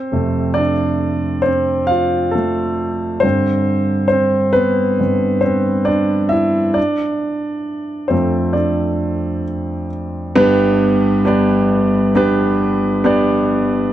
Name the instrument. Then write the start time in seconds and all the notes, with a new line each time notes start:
grand piano
Already playing: C4 C5
0.12 F2 C3 A3
0.54 D4 D5
1.42 C4 C5
1.87 F4 F5
2.31 A3 A4
3.20 G2 D3 C4 C5
4.08 C4 C5
4.53 B3 B4
5.00 G2 D3 C4
5.41 C4 C5
5.85 D4 D5
6.29 E4 E5
6.74 D4 D5
8.08 F2 F3 A3 C4 C5
8.53 D4 D5
10.36 G1 G2 B3 D4 G4 B4
11.25 B3 D4 G4 D5
12.15 B3 D4 G4 B4
13.04 B3 D4 G4 D5